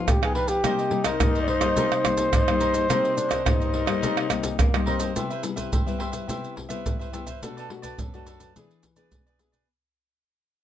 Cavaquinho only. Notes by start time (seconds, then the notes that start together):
0.22 G4 B4 F5
0.35 D4 G4 B4 F5
0.48 G4 B4 F5
0.64 D#4 A#4 C5 D#5
0.79 A#4 C5 D#5
0.92 muted cavaquinho stroke
1.05 A#4 C5 D#5
1.35 A#4 C5 D#5
1.47 D#4 A#4 C5 D#5
1.61 A#4 C5 D#5
1.77 D#4 A#4 C5 D#5
1.91 A#4 C5 D#5
2.04 muted cavaquinho stroke
2.47 A#4 C5 D#5
2.60 D#4 A#4 C5 D#5
2.73 A#4 C5 D#5
2.89 D#4 A#4 C5 D#5
3.03 A#4 C5 D#5
3.16 muted cavaquinho stroke
3.29 A#4 C5 D#5
3.60 A#4 C5 D#5
3.74 D#4 A#4 C5 D#5
3.86 A#4 C5 D#5
4.02 D#4 A#4 C5 D#5
4.17 A#4 C5 D#5
4.30 muted cavaquinho stroke
4.74 A#4 C5 D#5
4.86 D#4 A#4 C5 D#5
5.00 A#4 C5 D#5
5.16 G4 B4 C5 E5
5.30 B4 C5 E5
5.44 muted cavaquinho stroke
5.56 B4 C5 E5
5.72 G4 B4 C5 E5
5.86 B4 C5 E5
5.99 G4 B4 C5 E5
6.12 B4 C5 E5
6.27 G4 B4 C5 E5
6.56 muted cavaquinho stroke
6.69 B4 C5 E5
6.99 B4 C5 E5
7.13 G4 B4 C5 E5
7.26 B4 C5 E5
7.43 D4 A4 B4 D5
7.57 A4 B4 D5
7.69 muted cavaquinho stroke
7.82 A4 B4 D5
7.99 D4 A4 B4 D5
8.14 A4 B4 D5
8.27 D4 A4 B4 D5
8.40 A4 B4 D5
8.56 E4 G#4 B4 D5
8.84 muted cavaquinho stroke
8.96 G#4 B4 D5
9.26 G#4 B4 D5
9.39 E4 G#4 B4
9.52 G#4 B4 D5